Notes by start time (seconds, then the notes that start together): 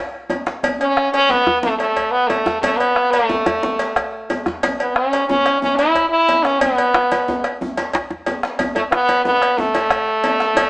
0.13 bombo rim
0.30 cowbell, djembe slap, djembe tone
0.46 bombo rim, djembe slap
0.63 bombo low, cowbell, djembe bass
0.79 C#4, bombo rim, cowbell
0.97 bombo rim
1.13 C#4, cowbell, djembe slap
1.29 B3, bombo low, djembe slap, djembe tone
1.47 bombo rim, djembe bass
1.62 A3, djembe slap, djembe bass
1.78 A3, bombo rim, cowbell, djembe slap
1.97 bombo low, cowbell
2.11 B3, bombo rim
2.28 A3, cowbell, djembe slap, djembe tone
2.46 bombo rim, djembe slap, djembe bass
2.61 A3, bombo low, cowbell, djembe slap, djembe bass
2.77 B3, cowbell
2.96 bombo rim, djembe slap
3.11 A3, cowbell, djembe slap
3.29 bombo low, djembe slap, djembe tone
3.46 bombo rim, cowbell, djembe bass
3.63 bombo rim, djembe slap, djembe bass
3.79 bombo rim, cowbell, djembe slap
3.96 bombo rim, bombo low, cowbell
4.13 bombo rim
4.30 cowbell, djembe tone
4.46 bombo rim, djembe slap, djembe bass
4.63 bombo low, cowbell, djembe slap, djembe bass
4.79 B3, bombo rim, cowbell
4.96 C#4, bombo rim
5.13 cowbell, djembe slap
5.28 C#4, bombo low, djembe slap, djembe tone
5.46 bombo rim, cowbell
5.61 C#4, djembe bass
5.76 E4, bombo rim, cowbell, djembe slap
5.95 bombo low, cowbell
6.09 E4, bombo rim
6.28 cowbell, djembe slap, djembe tone
6.43 C#4, bombo rim, djembe slap
6.60 B3, bombo low, cowbell, djembe bass
6.78 bombo rim, cowbell
6.94 bombo rim, djembe slap
7.11 cowbell, djembe slap, djembe tone
7.28 bombo low, djembe slap, djembe tone
7.44 bombo rim, cowbell
7.61 djembe tone, djembe bass
7.77 bombo rim, cowbell, djembe slap, djembe tone
7.93 bombo low, cowbell, djembe slap
8.10 bombo rim, djembe tone
8.26 cowbell, djembe slap, djembe tone
8.43 bombo rim, djembe slap
8.59 bombo low, cowbell, djembe tone, djembe bass
8.75 A3, bombo rim, cowbell, djembe tone
8.91 B3, bombo rim, djembe slap
9.09 cowbell, djembe slap, djembe tone
9.24 B3, djembe slap, djembe tone
9.42 bombo rim, cowbell
9.58 A3, djembe tone, djembe bass
9.75 bombo rim, cowbell, djembe slap, djembe tone
9.90 bombo rim, bombo low, cowbell
10.08 bombo rim
10.24 cowbell, djembe slap, djembe tone
10.40 bombo rim, djembe slap
10.56 bombo low, cowbell, djembe slap, djembe tone, djembe bass